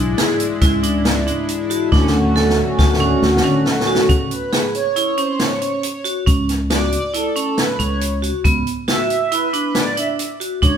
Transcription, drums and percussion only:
0.18 snare, closed hi-hat
0.40 closed hi-hat
0.61 kick, snare, closed hi-hat
0.83 closed hi-hat
1.05 snare, closed hi-hat
1.27 closed hi-hat
1.48 closed hi-hat
1.71 closed hi-hat
1.92 kick, snare
2.07 snare
2.36 snare
2.50 snare
2.79 kick, snare
2.93 snare
3.22 snare
3.37 snare
3.66 snare
3.80 snare
3.95 snare
4.09 kick, closed hi-hat
4.31 closed hi-hat
4.53 snare, closed hi-hat
4.75 closed hi-hat
4.96 closed hi-hat
5.17 closed hi-hat
5.40 snare, closed hi-hat
5.61 closed hi-hat
5.83 closed hi-hat
6.05 closed hi-hat
6.27 kick, closed hi-hat
6.49 snare, closed hi-hat
6.70 snare, closed hi-hat
6.92 closed hi-hat
7.14 closed hi-hat
7.36 closed hi-hat
7.58 snare, closed hi-hat
7.79 closed hi-hat
8.01 closed hi-hat
8.23 closed hi-hat
8.45 kick, closed hi-hat
8.67 closed hi-hat
8.88 snare, closed hi-hat
9.10 closed hi-hat
9.32 closed hi-hat
9.53 closed hi-hat
9.75 snare, closed hi-hat
9.97 closed hi-hat
10.19 closed hi-hat
10.41 closed hi-hat
10.63 kick, closed hi-hat

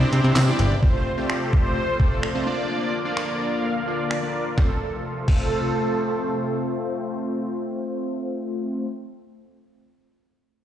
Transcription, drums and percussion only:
0.13 closed hi-hat
0.36 snare, clap, closed hi-hat, tambourine
0.59 closed hi-hat
0.83 kick
1.30 finger snap
1.53 kick
2.00 kick
2.23 finger snap
3.17 finger snap
4.11 finger snap
4.58 kick, snare
5.28 kick, crash

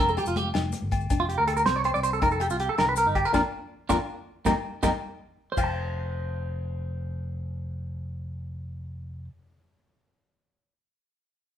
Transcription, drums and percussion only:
0.08 high conga, low conga, maracas
0.17 closed hi-hat, low conga, low agogo, maracas
0.26 maracas
0.36 closed hi-hat, muted conga, high conga, low conga
0.45 low conga
0.54 snare, closed hi-hat, low agogo
0.64 high conga, low conga
0.72 closed hi-hat, muted conga, maracas
0.82 low conga
0.92 kick, closed hi-hat, high conga, low agogo
1.01 low conga, maracas
1.10 kick, closed hi-hat, low agogo, maracas
1.30 closed hi-hat
1.48 closed hi-hat, low agogo
1.57 maracas
1.66 snare, closed hi-hat, maracas
1.84 closed hi-hat, low agogo
1.95 maracas
2.03 closed hi-hat, maracas
2.13 maracas
2.22 kick, closed hi-hat, low agogo
2.31 maracas
2.40 closed hi-hat, low agogo, maracas
2.50 maracas
2.60 closed hi-hat
2.78 snare, closed hi-hat, low agogo
2.96 closed hi-hat, maracas
3.15 kick, closed hi-hat, low agogo
3.25 maracas
3.34 kick, snare, low agogo, maracas
3.90 kick, snare, low agogo, maracas
4.46 kick, snare, low agogo, maracas
4.83 kick, snare, low agogo, maracas
5.57 kick, crash, low agogo, maracas

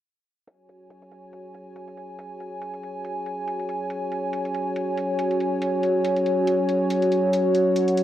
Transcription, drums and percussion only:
0.47 closed hi-hat
0.69 closed hi-hat
0.90 closed hi-hat
1.02 closed hi-hat
1.12 closed hi-hat
1.33 closed hi-hat
1.54 closed hi-hat
1.76 closed hi-hat
1.88 closed hi-hat
1.97 closed hi-hat
2.19 closed hi-hat
2.40 closed hi-hat
2.62 closed hi-hat
2.74 closed hi-hat
2.83 closed hi-hat
3.05 closed hi-hat
3.26 closed hi-hat
3.48 closed hi-hat
3.60 closed hi-hat
3.69 closed hi-hat
3.90 closed hi-hat
4.12 closed hi-hat
4.33 closed hi-hat
4.45 closed hi-hat
4.55 closed hi-hat
4.76 closed hi-hat
4.97 closed hi-hat
5.19 closed hi-hat
5.31 closed hi-hat
5.40 closed hi-hat
5.62 closed hi-hat
5.83 closed hi-hat
6.05 closed hi-hat
6.16 closed hi-hat
6.26 closed hi-hat
6.47 closed hi-hat
6.69 closed hi-hat
6.90 closed hi-hat
7.02 closed hi-hat
7.12 closed hi-hat
7.33 closed hi-hat
7.55 closed hi-hat
7.76 closed hi-hat
7.88 closed hi-hat
7.97 closed hi-hat

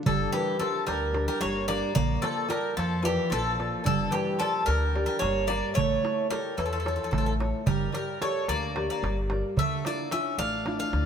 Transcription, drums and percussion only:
0.06 darbuka dum
0.34 darbuka tek
0.60 darbuka tek
0.88 darbuka tek
1.14 darbuka tek
1.42 darbuka tek
1.69 darbuka tek
1.96 darbuka dum
2.24 darbuka tek
2.51 darbuka tek
2.79 darbuka tek
3.06 darbuka tek
3.32 darbuka tek
3.60 darbuka tek
3.87 darbuka dum
4.14 darbuka tek
4.41 darbuka tek
4.68 darbuka tek
4.96 darbuka tek
5.22 darbuka tek
5.50 darbuka tek
5.78 darbuka dum
6.05 darbuka tek
6.18 darbuka tek
6.31 darbuka tek
6.59 darbuka tek
6.73 darbuka tek
6.86 darbuka tek
7.13 darbuka tek, darbuka dum
7.27 darbuka tek
7.40 darbuka tek
7.54 darbuka tek
7.67 darbuka dum
7.95 darbuka tek
8.22 darbuka tek
8.48 darbuka tek
8.76 darbuka tek
9.04 darbuka tek
9.30 darbuka tek
9.57 darbuka dum
9.85 darbuka tek
10.11 darbuka tek
10.39 darbuka tek
10.66 darbuka tek
10.93 darbuka tek

